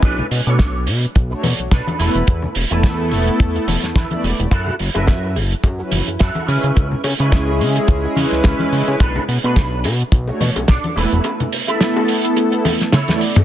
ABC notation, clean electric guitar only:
X:1
M:4/4
L:1/16
Q:"Swing 16ths" 1/4=107
K:Emix
V:1 name="Clean electric guitar"
[DAB]2 z [DAc]3 z6 [DAB]2 [EAB]2- | [EAB]2 z [EAB]3 z6 [EAB]2 z2 | [EFA]2 z [EFB]3 z6 [EFA]2 [CEB]2- | [CEB]2 z [CEB]3 z6 [CEB]2 z2 |
[DAB]2 z [DAB]3 z6 [DAd]2 [EAB]2- | [EAB]2 z [EAB]3 z6 [EAc]2 z2 |]